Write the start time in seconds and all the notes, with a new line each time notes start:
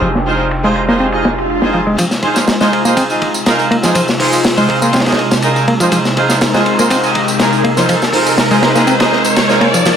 Already playing: C3 G#3 D4 G4
0.01 F1 F3, ride
0.15 snare
0.26 D#4 F4 G#4 C5, open hi-hat
0.39 ride
0.51 ride
0.64 G#3 D#4 F4 G#4 C5, ride
0.76 ride
0.88 A#3 D#4 F4 G#4 C5, snare
1.00 C4, ride, swell
1.12 D#4 F4 G#4 D#5, ride
1.25 snare
1.38 ride
1.50 ride
1.62 D#4 F4 G#4 C5, snare
1.73 F3, ride
1.87 G#3, ride
1.98 C3 F3 G#3 D#4 F4, kick, ride, tambourine, riser
2.11 snare, tambourine
2.23 F1 D#4 F4 G#4 C5, kick, ride
2.36 snare, tambourine
2.48 snare, ride, tambourine
2.60 G#3 D#4 F4 G#4 C5, snare, tambourine
2.72 C2, ride
2.85 A#3 D#4 F4 G#4 C5, tambourine
2.97 C4, kick, ride, tambourine
3.09 D#4 F4 G#4 D#5, tambourine
3.22 kick, ride
3.34 tambourine
3.46 D#4 F4 G#4 A#4, snare, ride, tambourine
3.59 ride, tambourine
3.71 A#3, ride
3.83 F3 D#4 F4 G#4 C5, snare, tambourine
3.95 F3, kick, ride, tambourine
4.08 snare, tambourine
4.20 F1 D#4 F4 G#4 C5, kick, open hi-hat
4.33 ride, tambourine
4.44 snare, ride, tambourine
4.57 G#3 D#4 F4 G#4 C5, ride, tambourine
4.69 C2, kick, ride
4.82 A#3 D#4 F4 G#4 C5, tambourine
4.93 C4, snare, ride, tambourine
5.00 snare, ride
5.06 D#4 F4 G#4 D#5, snare, ride, tambourine
5.12 snare, ride
5.18 C2, ride
5.31 snare, tambourine
5.42 D#4 F4 G#4 A#4, ride, tambourine
5.56 F1, ride, tambourine
5.68 A#3, ride
5.80 F3 D#4 F4 G#4 C5, kick, tambourine
5.92 F3 A#4, kick, ride, tambourine
6.05 snare, tambourine
6.16 F1 D#4 F4 G#4 C5, kick, ride
6.29 snare, tambourine
6.41 snare, ride, tambourine
6.54 G#3 D#4 F4 G#4 C5, snare, tambourine
6.66 C2, ride
6.79 A#3 D#4 F4 G#4 C5, tambourine
6.90 C4, kick, ride, tambourine
7.03 D#4 F4 G#4 D#5, tambourine
7.15 kick, ride
7.28 tambourine
7.39 D#4 F4 G#4 A#4, snare, ride, tambourine
7.52 ride, tambourine
7.64 A#3, ride
7.77 F3 D#4 F4 G#4 C5, snare, tambourine
7.89 F3, kick, ride, tambourine
8.02 snare, tambourine
8.13 F1 D#4 F4 G#4 C5, kick, open hi-hat
8.26 ride, tambourine
8.38 snare, ride, tambourine
8.51 G#3 D#4 F4 G#4 C5, ride, tambourine
8.62 C2, snare, ride
8.75 A#3 D#4 F4 G#4 C5, snare, tambourine
8.87 C4, ride, tambourine
9.00 D#4 F4 G#4 D#5, snare, ride, tambourine
9.12 C2, snare
9.24 ride, tambourine
9.36 C2, snare, ride, tambourine
9.49 D#4 F4 G#4 C5, snare, tambourine
9.60 F1 A#3, ride
9.74 F1 F3, kick, tambourine
9.85 F3 F4, snare, ride, tambourine